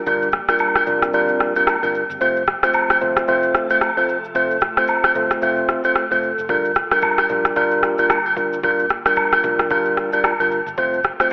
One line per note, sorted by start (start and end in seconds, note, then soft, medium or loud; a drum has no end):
0.00 6.45 F3 medium
0.00 2.17 G3 medium
0.00 2.17 A#3 medium
0.00 2.17 G4 medium
0.06 0.38 G1 loud
0.06 0.27 G3 medium
0.06 2.19 C4 medium
0.06 0.28 D4 medium
0.06 0.28 F4 medium
0.06 0.28 A#4 loud
0.06 high agogo medium
0.06 shaker medium
0.22 shaker soft
0.32 cross-stick medium
0.32 shaker medium
0.49 0.84 G3 medium
0.49 0.84 D4 medium
0.49 0.84 F4 medium
0.49 0.84 A#4 medium
0.49 cross-stick medium
0.49 high agogo medium
0.49 shaker medium
0.59 low woodblock medium
0.59 shaker medium
0.75 cross-stick medium
0.75 high agogo medium
0.75 shaker medium
0.86 1.14 F1 medium
0.86 1.12 G3 medium
0.86 1.12 D4 medium
0.86 1.12 F4 medium
0.86 1.12 A#4 medium
0.86 shaker medium
1.02 cross-stick medium
1.02 shaker medium
1.13 1.45 G1 medium
1.13 1.52 G3 medium
1.13 1.52 D4 medium
1.13 1.52 F4 medium
1.13 1.52 A#4 loud
1.13 high agogo medium
1.13 shaker medium
1.28 shaker soft
1.40 cross-stick medium
1.40 shaker medium
1.56 1.75 G3 medium
1.56 1.75 D4 medium
1.56 1.75 F4 medium
1.56 1.75 A#4 medium
1.56 high agogo medium
1.56 shaker medium
1.67 cross-stick loud
1.67 low woodblock medium
1.67 shaker medium
1.82 2.03 G1 medium
1.82 2.02 G3 medium
1.82 2.02 D4 medium
1.82 2.02 F4 medium
1.82 2.02 A#4 medium
1.82 high agogo medium
1.82 shaker medium
1.95 shaker medium
2.10 2.18 G1 medium
2.10 shaker loud
2.20 2.53 F1 loud
2.20 6.45 C3 medium
2.20 2.42 A3 medium
2.20 6.45 A3 medium
2.20 2.42 C4 medium
2.20 2.42 F4 medium
2.20 11.33 F4 medium
2.20 6.45 A4 medium
2.20 2.42 C5 loud
2.20 high agogo medium
2.20 shaker medium
2.37 shaker soft
2.47 cross-stick medium
2.47 shaker medium
2.63 2.98 A3 medium
2.63 2.98 C4 medium
2.63 2.98 F4 medium
2.63 2.99 C5 medium
2.63 cross-stick medium
2.63 high agogo medium
2.63 shaker medium
2.73 low woodblock medium
2.73 shaker medium
2.90 cross-stick medium
2.90 high agogo medium
2.90 shaker medium
3.01 3.21 G1 medium
3.01 3.26 A3 medium
3.01 3.26 C4 medium
3.01 3.26 F4 medium
3.01 3.26 C5 medium
3.01 shaker medium
3.17 cross-stick loud
3.17 shaker medium
3.28 3.60 F1 loud
3.28 3.66 A3 medium
3.28 3.66 C4 medium
3.28 3.67 F4 medium
3.28 3.67 C5 loud
3.28 high agogo medium
3.28 shaker medium
3.43 shaker medium
3.55 cross-stick medium
3.55 shaker medium
3.70 3.89 A3 medium
3.70 3.89 C4 medium
3.70 3.89 F4 medium
3.70 3.89 C5 medium
3.70 high agogo medium
3.70 shaker medium
3.81 cross-stick loud
3.81 low woodblock medium
3.81 shaker medium
3.97 4.16 A3 medium
3.97 4.16 C4 medium
3.97 4.16 F4 medium
3.97 4.16 C5 medium
3.97 high agogo medium
3.97 shaker medium
4.09 shaker medium
4.25 shaker loud
4.35 4.67 F1 loud
4.35 4.56 A3 medium
4.35 4.56 C4 medium
4.35 4.56 F4 medium
4.35 4.56 C5 loud
4.35 high agogo medium
4.35 shaker medium
4.51 shaker soft
4.61 cross-stick medium
4.61 shaker medium
4.77 5.13 A3 medium
4.77 5.13 C4 medium
4.77 5.13 F4 medium
4.77 5.13 C5 medium
4.77 cross-stick medium
4.77 high agogo medium
4.77 shaker medium
4.87 low woodblock medium
4.87 shaker medium
5.04 cross-stick medium
5.04 high agogo medium
5.04 shaker medium
5.15 5.35 G1 loud
5.15 5.40 A3 medium
5.15 5.40 C4 medium
5.15 5.40 F4 medium
5.15 5.40 C5 medium
5.15 shaker medium
5.31 cross-stick loud
5.31 shaker medium
5.42 5.74 F1 loud
5.42 5.81 A3 medium
5.42 5.81 C4 medium
5.42 5.81 F4 medium
5.42 5.81 C5 loud
5.42 high agogo medium
5.42 shaker medium
5.57 shaker soft
5.69 cross-stick medium
5.69 shaker medium
5.84 6.03 A3 medium
5.84 6.03 C4 medium
5.84 6.03 F4 medium
5.84 6.04 C5 medium
5.84 high agogo medium
5.84 shaker medium
5.96 cross-stick loud
5.96 shaker medium
6.11 6.31 F1 medium
6.11 6.30 A3 medium
6.11 6.30 C4 medium
6.11 6.30 F4 medium
6.11 6.30 C5 medium
6.11 high agogo medium
6.11 shaker medium
6.23 shaker medium
6.38 6.49 F1 medium
6.38 shaker loud
6.49 6.81 G1 loud
6.49 10.74 D3 medium
6.49 10.74 G3 medium
6.49 6.70 G3 medium
6.49 10.74 A#3 medium
6.49 6.70 D4 medium
6.49 6.71 F4 medium
6.49 8.61 G4 medium
6.49 6.71 A#4 loud
6.49 kick loud
6.49 high agogo medium
6.49 shaker medium
6.65 shaker soft
6.75 cross-stick medium
6.75 shaker medium
6.91 7.27 G3 medium
6.91 7.27 D4 medium
6.91 7.27 F4 medium
6.91 7.27 A#4 medium
6.91 cross-stick medium
6.91 high agogo medium
6.91 shaker medium
7.01 kick medium
7.01 low woodblock medium
7.01 shaker medium
7.18 cross-stick medium
7.18 high agogo medium
7.18 shaker medium
7.29 7.50 A#1 medium
7.29 7.54 G3 medium
7.29 7.55 D4 medium
7.29 7.55 F4 medium
7.29 7.55 A#4 medium
7.29 shaker medium
7.45 cross-stick medium
7.45 shaker medium
7.56 7.88 G1 medium
7.56 7.95 G3 medium
7.56 7.95 D4 medium
7.56 7.95 F4 medium
7.56 7.95 A#4 loud
7.56 kick medium
7.56 high agogo medium
7.56 shaker medium
7.71 shaker medium
7.83 cross-stick medium
7.83 shaker medium
7.98 8.18 G3 medium
7.98 8.18 D4 medium
7.98 8.18 F4 medium
7.98 8.18 A#4 medium
7.98 high agogo medium
7.98 shaker medium
8.10 cross-stick loud
8.10 low woodblock medium
8.10 shaker medium
8.26 high agogo medium
8.26 shaker medium
8.36 8.58 G3 medium
8.36 8.58 D4 medium
8.36 8.58 F4 medium
8.36 8.58 A#4 medium
8.36 kick medium
8.36 shaker medium
8.53 shaker loud
8.63 8.95 G1 loud
8.63 8.85 G3 medium
8.63 8.85 D4 medium
8.63 8.85 F4 medium
8.63 8.85 A#4 loud
8.63 10.76 A5 medium
8.63 kick loud
8.63 high agogo medium
8.63 shaker medium
8.79 shaker soft
8.89 cross-stick medium
8.89 shaker medium
9.05 9.41 G3 medium
9.05 9.41 D4 medium
9.05 9.41 F4 medium
9.05 9.41 A#4 medium
9.05 cross-stick medium
9.05 high agogo medium
9.05 shaker medium
9.16 kick medium
9.16 low woodblock medium
9.16 shaker medium
9.32 cross-stick medium
9.32 high agogo medium
9.32 shaker medium
9.44 9.70 F1 medium
9.44 9.69 G3 medium
9.44 9.69 D4 medium
9.44 9.69 F4 medium
9.44 9.69 A#4 medium
9.44 kick loud
9.44 shaker medium
9.59 cross-stick loud
9.59 shaker medium
9.70 10.02 G1 loud
9.70 10.09 G3 medium
9.70 10.09 D4 medium
9.70 10.09 F4 medium
9.70 10.09 A#4 loud
9.70 kick medium
9.70 high agogo medium
9.70 shaker medium
9.85 shaker medium
9.97 kick medium
9.97 cross-stick medium
9.97 shaker medium
10.13 10.32 G3 medium
10.13 10.32 D4 medium
10.13 10.32 F4 medium
10.13 10.32 A#4 medium
10.13 high agogo medium
10.13 shaker loud
10.24 kick medium
10.24 cross-stick loud
10.24 low woodblock medium
10.24 shaker medium
10.40 10.60 G1 medium
10.40 10.59 G3 medium
10.40 10.59 D4 medium
10.40 10.59 F4 medium
10.40 10.59 A#4 medium
10.40 high agogo medium
10.40 shaker medium
10.52 shaker medium
10.66 10.75 G1 loud
10.66 shaker loud
10.77 11.10 F1 loud
10.77 11.33 C3 medium
10.77 11.33 F3 medium
10.77 10.99 A3 medium
10.77 11.33 A3 medium
10.77 10.99 C4 medium
10.77 10.99 F4 medium
10.77 11.33 A4 medium
10.77 10.99 C5 loud
10.77 kick loud
10.77 high agogo medium
10.77 shaker medium
10.93 shaker soft
11.04 cross-stick medium
11.04 shaker medium
11.20 11.33 A3 medium
11.20 11.33 C4 medium
11.20 11.33 F4 medium
11.20 11.33 C5 medium
11.20 cross-stick medium
11.20 high agogo medium
11.20 shaker medium